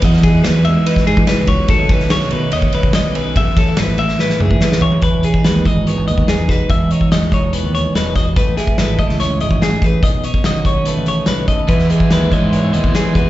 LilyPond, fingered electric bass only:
\new Staff \with { instrumentName = "Fingered electric bass" } { \clef bass \time 4/4 \key e \major \tempo 4 = 144 e,4 dis,16 e,8 r8. gis,16 e16 e16 cis,8 r16 | b,,8 b,,16 b,,8 r16 b,16 r16 dis,16 r16 b,,16 r16 b,,16 b,,8. | a,,4 gis,,16 a,,8 r8. cis,16 a,16 a,16 a,,8 r16 | e,,8 r8 dis,8 r16 gis,,8 gis,,16 dis,8 e,8 e,,16 r16 |
e,,8 r8 e,,8 r16 e,,8 dis,8 r16 e,,4 | a,,8 r8 gis,,8 r16 cis,8 cis,16 gis,,8 a,8 a,,16 r16 | b,,8 r8 b,,8 r16 b,,8 a,,8 r16 b,,4 | e,8 r8 dis,8 r16 gis,8 gis,16 dis,8 e8 e,16 r16 | }